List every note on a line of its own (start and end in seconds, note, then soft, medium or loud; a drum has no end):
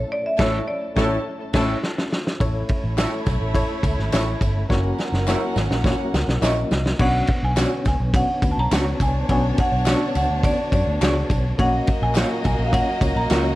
0.00 2.36 A3 medium
0.00 2.37 C#4 medium
0.00 2.36 E4 medium
0.00 0.12 C#5 medium
0.12 0.26 D5 loud
0.26 0.40 E5 medium
0.38 0.59 A1 loud
0.38 0.58 A3 loud
0.38 0.58 C#4 loud
0.38 0.59 E4 medium
0.38 0.59 E4 loud
0.38 0.58 A4 loud
0.38 0.59 A4 loud
0.38 0.59 C#5 medium
0.38 0.69 C#5 loud
0.38 0.58 A5 loud
0.38 kick loud
0.38 snare loud
0.38 crash medium
0.68 0.95 D5 medium
0.96 1.16 A1 loud
0.96 1.16 A3 loud
0.96 1.16 C#4 loud
0.96 1.16 E4 loud
0.96 1.16 A4 loud
0.96 1.17 A4 loud
0.96 1.17 C#5 loud
0.96 1.51 C#5 medium
0.96 1.17 C#5 loud
0.96 1.16 A5 loud
0.96 kick loud
0.96 snare loud
1.53 1.74 A1 loud
1.53 1.74 A3 loud
1.53 1.74 C#4 loud
1.53 1.74 E4 loud
1.53 1.73 A4 loud
1.53 1.74 A4 medium
1.53 1.74 C#5 loud
1.53 1.73 A5 loud
1.53 kick loud
1.53 snare loud
1.53 crash medium
1.83 snare medium
1.98 snare medium
2.12 snare medium
2.27 snare medium
2.40 2.62 A1 medium
2.40 4.66 A3 medium
2.40 4.68 A3 medium
2.40 4.68 C#4 medium
2.40 6.95 E4 medium
2.40 2.70 E4 medium
2.40 4.66 E4 medium
2.40 2.71 A4 medium
2.40 4.66 C#5 medium
2.40 2.71 C#5 loud
2.40 kick loud
2.40 ride medium
2.40 tambourine soft
2.69 kick loud
2.69 ride medium
2.84 3.05 A1 medium
2.97 3.28 E4 medium
2.97 3.09 E4 medium
2.97 3.28 A4 medium
2.97 3.09 A4 loud
2.97 3.28 C#5 medium
2.97 3.09 C#5 medium
2.97 snare loud
2.97 clap loud
2.97 ride medium
2.97 tambourine loud
3.26 3.37 B1 loud
3.26 kick medium
3.26 snare soft
3.26 ride medium
3.26 tambourine medium
3.41 3.62 A1 medium
3.54 3.85 E4 loud
3.54 3.85 A4 medium
3.54 3.85 C#5 loud
3.54 kick medium
3.54 ride medium
3.54 tambourine medium
3.83 3.94 C#2 medium
3.83 kick medium
3.83 ride medium
3.83 tambourine medium
3.98 4.09 G#1 medium
3.98 snare soft
4.12 4.34 A1 loud
4.12 4.43 E4 medium
4.12 4.23 E4 medium
4.12 4.43 A4 medium
4.12 4.24 A4 medium
4.12 4.24 C#5 medium
4.12 4.43 C#5 loud
4.12 snare medium
4.12 clap loud
4.12 ride medium
4.12 tambourine loud
4.41 4.62 G1 medium
4.41 kick medium
4.41 ride medium
4.41 tambourine medium
4.69 4.91 F#1 loud
4.69 6.97 F#3 medium
4.69 6.97 A#3 medium
4.69 5.00 A#3 medium
4.69 6.95 C#4 loud
4.69 5.00 C#4 medium
4.69 5.00 E4 medium
4.69 5.00 F#4 medium
4.69 6.95 A#4 medium
4.69 5.00 C#5 loud
4.69 6.95 F#5 loud
4.69 kick loud
4.69 snare medium
4.69 tambourine soft
4.99 snare medium
4.99 tambourine soft
5.12 5.34 F#1 loud
5.12 snare medium
5.28 5.58 A#3 medium
5.28 5.58 C#4 medium
5.28 5.38 E4 medium
5.28 5.58 E4 medium
5.28 5.58 F#4 medium
5.28 5.38 A#4 medium
5.28 5.58 C#5 loud
5.28 5.39 C#5 loud
5.28 snare medium
5.28 clap loud
5.28 tambourine loud
5.56 5.67 G#1 loud
5.56 snare medium
5.56 tambourine medium
5.71 5.92 A#1 medium
5.71 snare medium
5.84 6.15 A#3 medium
5.84 6.15 C#4 medium
5.84 6.15 E4 medium
5.84 6.15 F#4 medium
5.84 6.15 C#5 medium
5.84 kick loud
5.84 snare medium
5.84 tambourine medium
6.14 6.24 C#2 medium
6.14 snare loud
6.14 tambourine medium
6.28 6.38 B1 medium
6.28 snare medium
6.41 6.63 A#1 loud
6.41 6.72 A#3 medium
6.41 6.72 C#4 medium
6.41 6.53 E4 medium
6.41 6.72 E4 medium
6.41 6.72 F#4 medium
6.41 6.53 A#4 medium
6.41 6.72 C#5 loud
6.41 6.53 C#5 medium
6.41 7.02 D#5 medium
6.41 snare loud
6.41 clap medium
6.41 tambourine loud
6.71 6.92 C2 medium
6.71 snare loud
6.71 tambourine medium
6.86 snare medium
6.99 7.21 B1 medium
6.99 11.54 D3 medium
6.99 7.29 B3 loud
6.99 11.54 B3 medium
6.99 7.30 C#4 medium
6.99 7.30 D4 medium
6.99 7.30 F#4 medium
6.99 9.27 C#5 medium
6.99 7.30 C#5 loud
6.99 7.45 F#5 loud
6.99 kick loud
6.99 crash loud
6.99 tambourine soft
7.27 kick loud
7.27 ride medium
7.43 7.64 B1 loud
7.43 7.86 G#5 loud
7.56 7.87 B3 medium
7.56 7.87 C#4 medium
7.56 7.67 D4 medium
7.56 7.87 D4 medium
7.56 7.68 F#4 medium
7.56 7.87 F#4 medium
7.56 7.87 C#5 medium
7.56 7.68 C#5 medium
7.56 snare loud
7.56 clap loud
7.56 ride medium
7.56 tambourine loud
7.85 7.96 C#2 loud
7.85 8.13 G#5 medium
7.85 kick medium
7.85 snare soft
7.85 ride medium
7.85 tambourine medium
8.00 8.21 B1 loud
8.14 8.29 B3 medium
8.14 8.29 C#4 medium
8.14 8.29 D4 medium
8.14 11.54 D4 loud
8.14 8.29 F#4 medium
8.14 11.54 C#5 loud
8.14 8.30 C#5 medium
8.14 8.52 F#5 loud
8.14 kick loud
8.14 ride medium
8.14 tambourine medium
8.42 8.53 D2 medium
8.42 8.58 B3 medium
8.42 8.58 C#4 medium
8.42 8.58 D4 medium
8.42 8.58 F#4 medium
8.42 8.58 B4 medium
8.42 kick loud
8.42 ride medium
8.42 tambourine medium
8.51 8.58 A5 medium
8.58 8.68 B1 medium
8.58 8.98 A#5 loud
8.71 8.93 C#2 loud
8.71 9.01 B3 medium
8.71 9.02 C#4 medium
8.71 8.82 D4 loud
8.71 9.02 D4 medium
8.71 8.83 F#4 loud
8.71 9.02 F#4 medium
8.71 9.02 C#5 medium
8.71 8.83 C#5 loud
8.71 snare loud
8.71 clap medium
8.71 ride medium
8.71 tambourine loud
9.00 9.21 C2 medium
9.00 9.30 G#5 loud
9.00 kick medium
9.00 ride medium
9.00 tambourine medium
9.29 9.50 B1 loud
9.29 9.59 B3 loud
9.29 9.59 C#4 medium
9.29 9.60 D4 loud
9.29 11.56 F#4 medium
9.29 9.60 F#4 medium
9.29 9.60 C#5 loud
9.29 9.57 G#5 loud
9.29 kick medium
9.29 ride medium
9.58 10.15 F#5 loud
9.58 kick loud
9.58 ride medium
9.72 9.93 B1 loud
9.86 10.16 B3 medium
9.86 10.16 C#4 medium
9.86 9.97 D4 medium
9.86 10.16 D4 medium
9.86 9.97 F#4 medium
9.86 10.17 F#4 medium
9.86 9.97 C#5 medium
9.86 10.17 C#5 medium
9.86 snare loud
9.86 clap loud
9.86 ride medium
9.86 tambourine loud
10.15 10.26 C#2 loud
10.15 10.29 F#5 medium
10.15 ride medium
10.15 tambourine medium
10.29 10.51 D2 loud
10.43 10.58 B3 medium
10.43 10.59 C#4 medium
10.43 10.59 D4 medium
10.43 10.59 F#4 medium
10.43 10.59 C#5 medium
10.43 10.73 D5 loud
10.43 kick loud
10.43 ride medium
10.43 tambourine medium
10.72 10.83 F#2 medium
10.72 10.87 B3 medium
10.72 10.87 C#4 medium
10.72 10.87 D4 medium
10.72 10.88 F#4 medium
10.72 10.87 C#5 medium
10.72 11.01 D5 loud
10.72 kick loud
10.72 ride medium
10.72 tambourine medium
10.87 10.98 D2 loud
11.00 11.22 C#2 loud
11.00 11.31 B3 medium
11.00 11.12 D4 loud
11.00 11.31 D4 medium
11.00 11.12 F#4 medium
11.00 11.31 F#4 medium
11.00 11.31 G#4 medium
11.00 11.12 C#5 loud
11.00 11.55 D5 loud
11.00 snare loud
11.00 clap loud
11.00 ride medium
11.00 tambourine medium
11.30 11.51 B1 medium
11.30 kick loud
11.30 ride medium
11.30 tambourine medium
11.58 11.80 A#1 loud
11.58 13.55 F#3 medium
11.58 11.88 A#3 loud
11.58 13.55 A#3 loud
11.58 13.55 A#3 medium
11.58 11.88 C#4 medium
11.58 13.55 C#4 medium
11.58 13.55 F#4 loud
11.58 11.89 F#4 medium
11.58 11.89 C#5 loud
11.58 13.55 D#5 loud
11.58 11.99 F#5 loud
11.58 kick loud
11.58 ride medium
11.87 kick loud
11.87 ride medium
11.87 tambourine soft
12.02 12.23 A#1 loud
12.02 12.44 G#5 loud
12.15 12.45 A#3 medium
12.15 12.46 C#4 medium
12.15 12.46 F4 medium
12.15 12.27 F4 medium
12.15 12.46 F#4 medium
12.15 12.27 A#4 medium
12.15 12.46 C#5 medium
12.15 12.27 C#5 loud
12.15 snare loud
12.15 clap loud
12.15 ride medium
12.15 tambourine loud
12.44 12.55 B1 loud
12.44 12.67 G#5 loud
12.44 kick medium
12.44 ride medium
12.44 tambourine medium
12.59 12.80 A#1 loud
12.66 12.73 F5 medium
12.72 12.87 A#3 medium
12.72 12.87 C#4 medium
12.72 12.88 F4 medium
12.72 12.88 F#4 medium
12.72 12.88 C#5 loud
12.72 13.18 F#5 loud
12.72 kick loud
12.72 ride medium
12.72 tambourine medium
13.01 13.12 C#2 medium
13.01 13.16 A#3 medium
13.01 13.17 C#4 medium
13.01 13.17 F4 medium
13.01 13.17 F#4 medium
13.01 13.17 C#5 medium
13.01 kick loud
13.01 ride medium
13.01 tambourine medium
13.16 13.27 A#1 loud
13.16 13.55 A#5 loud
13.30 13.55 C#2 loud
13.30 13.55 A#3 medium
13.30 13.55 C#4 medium
13.30 13.55 F4 medium
13.30 13.41 F4 medium
13.30 13.55 F#4 medium
13.30 13.41 A#4 medium
13.30 13.55 C#5 medium
13.30 13.42 C#5 loud
13.30 snare loud
13.30 clap loud
13.30 ride medium
13.30 tambourine medium